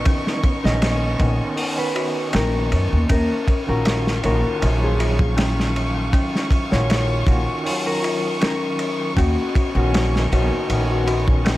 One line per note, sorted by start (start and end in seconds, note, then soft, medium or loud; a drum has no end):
0.00 0.57 D#3 medium
0.00 0.59 B3 medium
0.00 3.05 B3 medium
0.00 0.05 C#4 medium
0.00 0.61 C#4 medium
0.00 1.95 F#4 medium
0.00 3.05 D#5 medium
0.00 3.06 C#6 medium
0.05 1.54 C#4 medium
0.05 kick loud
0.05 ride medium
0.27 snare soft
0.44 kick loud
0.44 ride medium
0.63 1.16 A#1 loud
0.63 1.15 D#3 medium
0.63 1.16 B3 medium
0.63 1.17 C#4 medium
0.63 1.32 D#5 medium
0.63 snare medium
0.82 snare loud
0.82 ride medium
1.19 1.38 A#1 loud
1.19 1.53 D#3 medium
1.19 1.54 B3 medium
1.19 1.54 C#4 medium
1.19 kick medium
1.19 ride medium
1.56 3.06 D#3 medium
1.56 3.08 B3 medium
1.56 open hi-hat medium
1.62 3.09 C#4 medium
1.78 2.28 B4 medium
1.95 2.30 F#4 medium
1.95 ride medium
2.33 2.74 A#1 medium
2.33 2.56 C#4 medium
2.33 3.03 A#4 medium
2.33 snare loud
2.33 ride medium
2.72 2.90 F#2 medium
2.72 ride medium
2.93 3.08 D#2 medium
3.09 3.27 D#2 loud
3.09 4.58 C#4 medium
3.09 3.62 A#4 loud
3.09 9.13 F5 medium
3.09 11.57 C#6 medium
3.09 kick loud
3.09 ride loud
3.48 kick medium
3.48 ride medium
3.67 4.20 A#1 medium
3.67 4.19 D#3 medium
3.67 4.19 C#4 medium
3.67 4.20 F4 medium
3.67 4.20 F#4 medium
3.67 4.19 A#4 medium
3.85 snare loud
3.85 ride medium
4.07 snare medium
4.22 4.42 A#1 loud
4.22 4.56 D#3 medium
4.22 4.57 C#4 medium
4.22 4.58 F4 medium
4.22 4.58 F#4 medium
4.22 4.76 A#4 loud
4.22 ride medium
4.59 6.10 A#1 loud
4.59 6.65 D#3 medium
4.59 6.66 C#4 medium
4.59 ride medium
4.63 6.69 F#3 medium
4.63 6.68 F4 medium
4.84 5.33 G#4 medium
4.99 5.34 F4 medium
4.99 ride medium
5.19 kick loud
5.37 5.60 C#4 medium
5.37 snare loud
5.37 ride medium
5.60 snare soft
5.76 ride medium
6.13 7.61 C#4 medium
6.13 kick loud
6.13 ride medium
6.35 snare soft
6.51 kick medium
6.51 ride medium
6.70 7.24 A#1 loud
6.70 7.22 D#3 medium
6.70 7.23 C#4 medium
6.70 7.23 F4 medium
6.70 7.24 F#4 medium
6.70 7.40 C#5 medium
6.70 snare medium
6.90 snare loud
6.90 ride medium
7.26 7.45 A#1 loud
7.26 7.60 D#3 medium
7.26 7.61 C#4 medium
7.26 7.61 F4 medium
7.26 7.62 F#4 medium
7.26 kick medium
7.26 ride medium
7.63 9.14 D#3 medium
7.63 9.15 C#4 medium
7.63 open hi-hat medium
7.67 9.17 F#3 medium
7.67 9.16 F4 medium
7.87 8.36 A#4 medium
8.03 8.37 F4 medium
8.03 ride medium
8.41 8.64 C#4 medium
8.41 9.11 A#4 medium
8.41 snare loud
8.41 ride medium
8.79 ride medium
9.17 9.35 D#2 loud
9.17 11.57 B3 medium
9.17 10.65 C#4 medium
9.17 9.70 F#4 loud
9.17 11.57 D#5 medium
9.17 kick loud
9.17 ride medium
9.55 kick medium
9.55 ride medium
9.75 10.27 A#1 loud
9.75 10.26 D#3 medium
9.75 10.27 B3 medium
9.75 10.28 C#4 loud
9.75 10.26 F#4 medium
9.94 snare loud
9.94 ride medium
10.16 snare medium
10.31 10.49 A#1 loud
10.31 10.64 D#3 medium
10.31 10.65 B3 medium
10.31 10.66 C#4 medium
10.31 10.84 F#4 loud
10.31 ride medium
10.67 11.57 A#1 medium
10.67 11.57 D#3 medium
10.67 11.57 B3 medium
10.67 ride medium
10.73 11.57 C#4 medium
10.90 11.40 F#4 medium
11.07 11.41 F#4 medium
11.07 ride medium
11.28 kick medium
11.45 11.57 C#4 medium
11.45 snare loud
11.45 ride medium